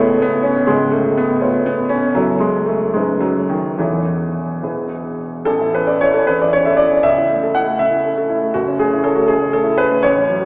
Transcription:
Already playing: C#1 C#2 G#3 A3 B3
0.00 E4 A4 C#5
0.22 B3
0.43 C#4
0.67 C#1 C#2 G#3
0.91 A3
1.17 B3
1.40 A3 F4 B4 C#5
1.66 B3
1.89 C#4
2.15 F#1 F#2 F#3 E4 A4 C#5
2.40 G#3
2.66 A3
2.94 F#1 F#2 G#3 D#4 A4 B4
3.21 F#3
3.50 D#3
3.78 E1 E2 E3 E4 A4 C#5
4.62 E1 E2 E4 G#4 B4
5.45 A1 A4
5.61 E4
5.75 C#4 B4
5.87 A4 D5
6.01 E4 C#5
6.13 C#4 A4
6.27 E2 B4
6.41 E4 D5
6.53 C#4 C#5
6.65 A4 E5
6.77 E4 D5
6.92 C#4
7.03 C#2 E5
7.18 E4
7.30 A3
7.43 A4
7.55 E4 F#5
7.68 A3
7.79 C#3 E5
7.90 E4
8.05 A3
8.18 A4
8.29 E4
8.42 A3
8.54 F#1 F#4
8.67 C#4
8.79 A3 G#4
8.93 E4
9.04 C#4 A4
9.15 A3 F#4
9.28 C#2 G#4
9.41 C#4
9.53 A3 A4
9.64 E4
9.78 C#4 B4
9.91 A3
10.03 A1 C#5
10.16 C#4
10.29 F#3
10.41 F#4

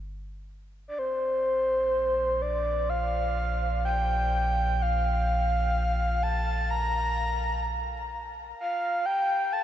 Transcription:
Already playing: G1
0.88 D5
0.96 A#1 C5
2.42 D5
2.89 F5
3.85 G5
4.82 F5
6.23 A5
6.70 A#5
8.60 F5
9.05 G5
9.53 A5

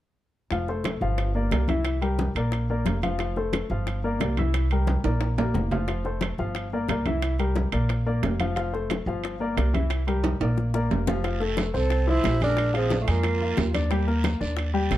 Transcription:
0.51 F1 F3 F4 F5, high bongo, high conga, high timbale
0.68 A3 A4 C5, high bongo, high conga
0.84 high bongo, high conga, high timbale, low timbale
1.01 G1 F3 F4 F5, high bongo, high conga
1.18 high bongo, high conga, high timbale
1.35 A#3 A#4 D5, high conga
1.51 C2 A#3 A#4 D5, high bongo, low bongo, high conga, high timbale, low timbale
1.68 E3 E4 E5, high bongo, high conga, high timbale
1.85 high bongo, high conga, high timbale
2.01 G3 G4 A#4, high bongo, high conga, high timbale
2.19 high bongo, high conga, low timbale
2.35 A#1 A#3 A#4 D5, high bongo, high conga, high timbale
2.52 high bongo, high conga, high timbale
2.70 A#3 A#4 D5, high conga
2.85 F1, high bongo, low bongo, high conga, high timbale, low timbale
3.02 F3 F4 F5, high bongo, high conga, high timbale
3.19 F3 F4 F5, high bongo, high conga, high timbale
3.36 A3 A4 C5, high bongo, high conga
3.53 high bongo, high conga, high timbale, low timbale
3.70 G1 F3 F4 F5, high bongo, high conga
3.87 high bongo, high conga, high timbale
4.04 A#3 A#4 D5, high conga
4.20 C2 A#3 A#4 D5, high bongo, low bongo, high conga, high timbale, low timbale
4.37 E3 E4 E5, high bongo, high conga, high timbale
4.54 high bongo, high conga, high timbale
4.70 G3 G4 A#4, high bongo, high conga, high timbale
4.87 high bongo, high conga, low timbale
5.04 A#1 A#3 A#4 D5, high bongo, high conga, high timbale
5.21 high bongo, high conga, high timbale
5.38 A#3 A#4 D5, high conga, low timbale
5.54 F1, high bongo, low bongo, low conga
5.71 F3 F4 F5, high bongo, low conga, low timbale
5.88 F3 F4 F5, high bongo, high conga, high timbale
6.05 A3 A4 C5, high bongo, high conga
6.21 high bongo, high conga, high timbale, low timbale
6.38 G1 F3 F4 F5, high bongo, high conga
6.55 high bongo, high conga, high timbale
6.72 A#3 A#4 D5, high conga
6.88 C2 A#3 A#4 D5, high bongo, low bongo, high conga, high timbale, low timbale
7.06 E3 E4 E5, high bongo, high conga, high timbale
7.22 high bongo, high conga, high timbale
7.39 G3 G4 A#4, high bongo, high conga, high timbale
7.56 high bongo, high conga, low timbale
7.72 A#1 A#3 A#4 D5, high bongo, high conga, high timbale
7.89 high bongo, high conga, high timbale
8.06 A#3 A#4 D5, high conga
8.23 F1, high bongo, low bongo, high conga, high timbale, low timbale
8.40 F3 F4 F5, high bongo, high conga, high timbale
8.56 F3 F4 F5, high bongo, high conga, high timbale
8.73 A3 A4 C5, high bongo, high conga
8.90 high bongo, high conga, high timbale, low timbale
9.06 G1 F3 F4 F5, high bongo, high conga
9.24 high bongo, high conga, high timbale
9.40 A#3 A#4 D5, high conga
9.57 C2 A#3 A#4 D5, high bongo, low bongo, high timbale, low timbale
9.73 E3 E4 E5, high bongo, high conga, high timbale
9.90 high bongo, high conga, high timbale
10.07 G3 G4 A#4, high bongo, high conga, high timbale
10.24 high bongo, high conga, high timbale
10.40 A#1 A#3 A#4 D5, high bongo, high conga, high timbale
10.57 high bongo, high conga
10.74 A#3 A#4 D5, high bongo, high conga
10.91 F1, high conga, low timbale
11.07 F3 F4 F5, low bongo, high conga, low timbale
11.24 F3 F4, high bongo, high conga, high timbale, long guiro
11.40 A3 A4, high bongo, high conga
11.57 high bongo, high conga, high timbale, low timbale, short guiro
11.74 C2 C4 A4 C5, high bongo, high conga, short guiro
11.90 high bongo, high conga, high timbale, long guiro
12.07 F3 E4 C5, high conga
12.24 A#1, high bongo, low bongo, high conga, high timbale, low timbale, short guiro
12.40 G#3 D4 G#4 A#4, high bongo, high conga, high timbale, short guiro
12.57 high bongo, high conga, high timbale, long guiro
12.74 F3 C4 F4 G#4, high bongo, high conga, high timbale
12.90 high bongo, high conga, low timbale, short guiro
13.01 A3 F4
13.07 F2 G#3 A#3 F4 G#4, high bongo, high conga, high timbale, short guiro
13.23 high bongo, high conga, high timbale, long guiro
13.41 F4 F5, high conga
13.57 D#2, high bongo, low bongo, high conga, high timbale, low timbale, short guiro
13.74 D4 D5, high bongo, high conga, high timbale, short guiro
13.91 G3 G4, high bongo, high conga, high timbale, long guiro
14.07 A#3 A#4, high bongo, high conga
14.24 high bongo, high conga, high timbale, low timbale, short guiro
14.41 D#2 D4 D5, high bongo, high conga, short guiro
14.57 high bongo, high conga, high timbale, long guiro
14.74 G3 G4, high conga
14.90 A1, high bongo, low bongo, high conga, high timbale, low timbale, short guiro

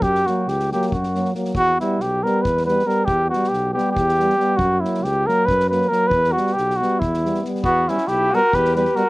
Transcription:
0.01 F#2 G4, kick
0.15 snare
0.26 F#3 A#3 F#4, snare
0.47 C#2 G4, snare
0.59 snare
0.71 F#3 A#3 G4, snare
0.81 snare
0.88 F#2 G4
0.92 F#4, kick
1.03 snare
1.14 F#3 A#3, snare
1.25 snare
1.34 F#3 A#3, snare
1.44 snare
1.53 E2 F#4, kick
1.79 G3 B3 E4, snare
1.98 B1 G4, snare
2.23 G3 B3 A#4, snare
2.42 E2 B4, kick
2.57 snare
2.66 G3 B3 B4, snare
2.79 snare
2.86 G3 B3 A#4, snare
3.05 E2 G4, kick
3.29 G3 B3 F#4, snare
3.44 snare
3.48 B1 G4
3.53 snare
3.73 G3 B3 G4
3.78 snare
3.92 E2 G4
3.97 kick
4.08 snare
4.17 G3 B3, snare
4.29 snare
4.38 G3 B3, snare
4.56 F#2 F#4, kick
4.81 F#3 A#3 E4, snare
4.94 snare
5.01 C#2 G4, snare
5.26 F#3 A#3 A#4, snare
5.46 F#2 B4, kick
5.60 snare
5.69 F#3 A#3 B4, snare
5.81 snare
5.88 F#3 A#3 A#4, snare
6.07 E2 B4
6.11 kick
6.24 snare
6.32 G3 B3 F#4
6.37 snare
6.47 snare
6.53 B1 G4
6.57 snare
6.70 snare
6.76 G3 B3 F#4
6.82 snare
6.99 E2 E4, kick
7.13 snare
7.24 G3 B3, snare
7.34 snare
7.42 G3 B3, snare
7.55 snare
7.62 E2 B3 F#4, kick
7.87 G3 B3 C#4 E4, snare
7.97 snare
8.07 B1 E4 G4, snare
8.31 G3 B3 F#4, snare
8.35 A#4
8.52 E2 G4 B4, kick
8.65 snare
8.75 G3 B3 G4 B4, snare
8.85 snare
8.95 G3 B3 F#4 A#4, snare

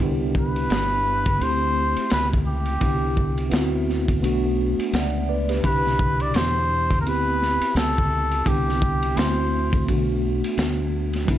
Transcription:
Already playing: B3
0.00 C2 D4 E4 G4
0.35 kick
0.39 B4
0.56 ride
0.70 G1, snare, hi-hat pedal, ride
1.25 kick, ride
1.38 D2 A3 C4 E4, ride
1.43 G4 C5
1.96 muted fingered electric bass stroke, ride
2.10 C#2 B4, snare, hi-hat pedal, ride
2.33 kick
2.47 G4
2.66 ride
2.80 C2 B3 D4 E4 G4, kick, ride
3.17 kick
3.38 ride
3.50 D2 B3 C4 E4 F4, snare, hi-hat pedal, ride
3.59 F#4
3.90 snare
4.08 kick, ride
4.20 B1 A3 B3 D4, ride
4.25 F#4
4.79 ride
4.93 C#2 D5 F#5, snare, hi-hat pedal, ride
5.29 B4 D5
5.49 G4 B4, snare, ride
5.62 C2 B2 D4 E4 B4, kick, ride
5.67 G4
5.86 snare
5.99 kick
6.20 D5, ride
6.34 E2 C5, snare, hi-hat pedal, ride
6.91 kick, ride
7.01 B3 A#4
7.05 D2 C4 E4 G4 B4, ride
7.42 snare
7.60 muted fingered electric bass stroke, ride
7.75 C#2 A4, snare, hi-hat pedal, ride
7.98 kick
8.31 ride
8.46 C2 B3 D4 E4 G4, kick, ride
8.69 snare
8.82 kick
9.03 ride
9.16 D2 A3 C4 E4 F#4 C5, snare, hi-hat pedal, ride
9.73 kick, ride
9.85 B1 A3 B3 D4, kick
9.89 F#4, ride
10.42 muted fingered electric bass stroke, ride
10.57 D2, snare, hi-hat pedal, ride
11.13 snare, ride
11.25 C2 G3 B3 D4, kick, ride
11.31 E4

